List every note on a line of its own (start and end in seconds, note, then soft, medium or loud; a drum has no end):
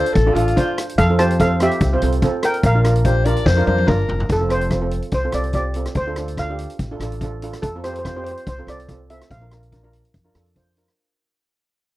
0.00 0.13 D4 loud
0.00 0.13 F4 medium
0.00 0.13 A4 loud
0.00 0.15 C5 loud
0.06 closed hi-hat medium
0.14 0.33 A1 loud
0.14 0.36 A4 loud
0.14 kick loud
0.14 closed hi-hat medium
0.26 0.32 D4 medium
0.26 0.32 F4 medium
0.26 0.32 A4 loud
0.34 0.53 A1 medium
0.34 0.49 D4 medium
0.34 0.88 F4 medium
0.34 0.49 F4 medium
0.34 0.49 A4 medium
0.34 closed hi-hat loud
0.48 closed hi-hat medium
0.56 0.88 D4 loud
0.56 0.89 F4 medium
0.56 0.89 C5 loud
0.56 kick loud
0.56 closed hi-hat medium
0.78 cross-stick medium
0.78 closed hi-hat loud
0.89 closed hi-hat medium
0.98 1.67 F2 loud
0.98 1.18 A4 medium
0.98 1.17 F5 loud
0.98 kick loud
0.98 closed hi-hat medium
1.09 1.15 C4 medium
1.09 1.15 F4 medium
1.09 1.15 A4 medium
1.19 1.32 C4 medium
1.19 1.32 F4 medium
1.19 1.32 G4 medium
1.19 1.38 C5 medium
1.19 1.38 A5 medium
1.19 cross-stick loud
1.19 closed hi-hat medium
1.31 closed hi-hat medium
1.40 1.53 C4 medium
1.40 1.53 F4 medium
1.40 1.53 A4 medium
1.40 1.59 A4 medium
1.40 1.59 F5 loud
1.40 kick loud
1.40 closed hi-hat medium
1.60 1.79 C4 medium
1.60 1.80 F4 medium
1.60 1.80 G4 medium
1.60 2.40 G4 medium
1.60 2.40 E5 loud
1.60 cross-stick medium
1.60 closed hi-hat medium
1.71 closed hi-hat medium
1.80 1.98 C2 loud
1.80 kick loud
1.80 closed hi-hat medium
1.93 1.98 C4 medium
1.93 1.98 F4 medium
1.93 1.98 C5 medium
2.02 2.19 C2 medium
2.02 2.15 C4 medium
2.02 2.15 F4 medium
2.02 2.16 A4 medium
2.02 closed hi-hat medium
2.12 closed hi-hat medium
2.22 2.55 C4 medium
2.22 2.55 F4 medium
2.22 2.55 A4 loud
2.22 kick loud
2.22 closed hi-hat medium
2.43 2.53 A#4 medium
2.43 2.54 G5 medium
2.43 cross-stick loud
2.43 closed hi-hat medium
2.54 closed hi-hat medium
2.63 3.32 A#1 loud
2.63 3.85 A#4 medium
2.63 3.85 F5 loud
2.63 kick loud
2.63 closed hi-hat medium
2.75 2.80 D4 medium
2.75 2.81 F4 medium
2.75 2.81 A#4 medium
2.84 2.98 D4 medium
2.84 2.98 F4 medium
2.84 2.98 A#4 medium
2.84 cross-stick medium
2.84 closed hi-hat medium
2.96 closed hi-hat medium
3.05 3.18 D4 medium
3.05 3.18 F4 medium
3.05 3.19 G4 medium
3.05 3.26 C5 medium
3.05 kick medium
3.05 closed hi-hat medium
3.25 3.45 D4 medium
3.25 3.45 F4 medium
3.25 3.45 A#4 loud
3.25 3.48 D5 loud
3.25 closed hi-hat medium
3.37 closed hi-hat medium
3.46 3.63 F2 loud
3.46 3.66 C5 loud
3.46 kick loud
3.46 snare medium
3.57 3.63 D4 medium
3.57 3.63 F4 medium
3.57 3.63 A#4 medium
3.66 3.84 F2 medium
3.66 3.80 D4 medium
3.66 3.80 F4 medium
3.66 3.81 A#4 medium
3.66 3.89 C5 loud
3.66 high tom medium
3.78 high tom medium
3.87 4.07 G1 medium
3.87 4.19 D4 loud
3.87 4.20 F4 medium
3.87 4.20 A#4 loud
3.87 4.29 A#4 medium
3.87 kick loud
3.87 mid tom loud
4.09 4.27 F1 medium
4.09 floor tom loud
4.20 floor tom medium
4.29 4.98 F1 loud
4.29 4.41 A4 medium
4.29 kick loud
4.29 closed hi-hat medium
4.40 4.46 C4 medium
4.40 4.47 F4 medium
4.40 4.47 A4 medium
4.49 4.63 C4 medium
4.49 4.63 F4 medium
4.49 4.63 A4 medium
4.49 4.90 C5 medium
4.49 cross-stick medium
4.49 closed hi-hat medium
4.61 closed hi-hat medium
4.70 4.77 C4 medium
4.70 4.78 F4 medium
4.70 4.78 A4 medium
4.70 kick medium
4.70 cross-stick medium
4.70 closed hi-hat medium
4.81 5.07 C4 medium
4.81 5.07 F4 medium
4.81 5.07 A4 medium
4.91 closed hi-hat medium
5.02 closed hi-hat soft
5.11 5.30 C2 medium
5.11 5.23 C5 medium
5.11 kick loud
5.11 closed hi-hat medium
5.24 5.30 C4 medium
5.24 5.30 F4 medium
5.24 5.30 A4 medium
5.32 5.85 C2 medium
5.32 5.47 C4 medium
5.32 5.47 F4 medium
5.32 5.47 A4 medium
5.32 5.54 D5 medium
5.32 cross-stick medium
5.32 closed hi-hat medium
5.44 closed hi-hat soft
5.53 5.67 C4 medium
5.53 5.68 F4 medium
5.53 5.68 G4 medium
5.53 5.93 D5 medium
5.53 kick medium
5.53 closed hi-hat medium
5.74 5.94 C4 medium
5.74 5.95 F4 medium
5.74 5.95 A4 medium
5.74 closed hi-hat medium
5.85 cross-stick medium
5.85 closed hi-hat medium
5.95 6.65 D2 medium
5.95 6.40 C5 medium
5.95 kick loud
5.95 closed hi-hat medium
6.07 6.13 D4 medium
6.07 6.13 F4 medium
6.07 6.13 A4 medium
6.16 6.30 D4 medium
6.16 6.30 F4 medium
6.16 6.31 A4 medium
6.16 cross-stick medium
6.16 closed hi-hat medium
6.28 closed hi-hat medium
6.37 6.45 D4 medium
6.37 6.45 F4 medium
6.37 6.45 A4 medium
6.37 7.39 F5 medium
6.37 kick medium
6.37 cross-stick medium
6.37 closed hi-hat soft
6.50 6.74 D4 medium
6.50 6.74 F4 medium
6.50 6.75 G4 medium
6.59 closed hi-hat medium
6.70 closed hi-hat medium
6.79 6.97 A1 medium
6.79 kick loud
6.79 closed hi-hat medium
6.91 6.97 D4 medium
6.91 6.97 F4 medium
6.91 6.97 A4 medium
7.00 7.52 A1 medium
7.00 7.14 D4 medium
7.00 7.14 F4 medium
7.00 7.15 A4 medium
7.00 cross-stick medium
7.00 closed hi-hat medium
7.12 closed hi-hat medium
7.21 7.35 D4 medium
7.21 7.35 F4 medium
7.21 7.35 A4 medium
7.21 kick medium
7.21 closed hi-hat medium
7.42 7.61 D4 medium
7.42 7.62 F4 medium
7.42 7.62 A4 medium
7.42 closed hi-hat medium
7.53 cross-stick medium
7.53 closed hi-hat medium
7.62 8.32 F2 medium
7.62 7.72 A4 medium
7.62 kick medium
7.62 closed hi-hat medium
7.75 7.81 C4 medium
7.75 7.81 F4 medium
7.75 7.81 A4 medium
7.84 7.97 C4 medium
7.84 7.97 F4 medium
7.84 7.98 G4 medium
7.84 7.92 C5 medium
7.84 cross-stick medium
7.84 closed hi-hat medium
7.94 7.98 C5 medium
7.94 closed hi-hat medium
7.99 8.06 C5 medium
8.05 8.12 C4 medium
8.05 8.12 F4 medium
8.05 8.12 C5 medium
8.05 8.15 C5 medium
8.05 kick medium
8.05 cross-stick medium
8.05 closed hi-hat medium
8.17 8.41 C4 medium
8.17 8.41 F4 medium
8.17 8.41 G4 medium
8.17 8.23 C5 medium
8.24 8.30 C5 medium
8.24 closed hi-hat medium
8.31 8.39 C5 medium
8.37 closed hi-hat medium
8.47 8.64 C2 medium
8.47 8.58 C5 medium
8.47 kick loud
8.47 closed hi-hat medium
8.58 8.64 C4 medium
8.58 8.64 F4 medium
8.58 8.64 A4 medium
8.67 9.19 C2 medium
8.67 8.81 C4 medium
8.67 8.81 F4 medium
8.67 8.81 A4 medium
8.67 9.12 D5 medium
8.67 cross-stick medium
8.67 closed hi-hat medium
8.80 closed hi-hat soft
8.89 9.02 C4 medium
8.89 9.02 F4 medium
8.89 9.02 A4 medium
8.89 kick medium
8.89 closed hi-hat medium
9.10 9.29 C4 medium
9.10 9.29 F4 medium
9.10 9.29 A4 medium
9.10 9.31 E5 medium
9.10 closed hi-hat medium
9.21 cross-stick medium
9.21 closed hi-hat soft
9.30 10.00 A#1 medium
9.30 10.52 F5 medium
9.30 kick medium
9.30 closed hi-hat soft
9.41 9.47 D4 medium
9.41 9.47 F4 medium
9.41 9.47 A#4 medium
9.51 9.65 D4 medium
9.51 9.65 F4 medium
9.51 9.65 A#4 medium
9.51 cross-stick medium
9.51 closed hi-hat medium
9.63 closed hi-hat medium
9.72 9.79 D4 medium
9.72 9.79 F4 medium
9.72 9.79 A#4 medium
9.72 kick medium
9.72 closed hi-hat soft
9.83 10.08 D4 medium
9.83 10.09 F4 medium
9.83 10.09 A#4 medium
9.93 closed hi-hat medium
10.05 closed hi-hat soft
10.14 10.31 F2 medium
10.14 kick medium
10.14 closed hi-hat medium
10.25 10.31 D4 medium
10.25 10.31 F4 medium
10.25 10.31 A#4 medium
10.35 10.87 F2 medium
10.35 10.48 D4 medium
10.35 10.48 F4 medium
10.35 10.48 A4 medium
10.35 cross-stick medium
10.35 closed hi-hat medium
10.46 closed hi-hat soft
10.56 10.69 D4 medium
10.56 10.69 F4 medium
10.56 10.70 C5 medium
10.56 kick medium
10.56 closed hi-hat medium
10.77 10.96 D4 medium
10.77 10.96 F4 medium
10.77 10.96 A#4 medium
10.77 closed hi-hat medium
10.88 cross-stick medium
10.88 closed hi-hat soft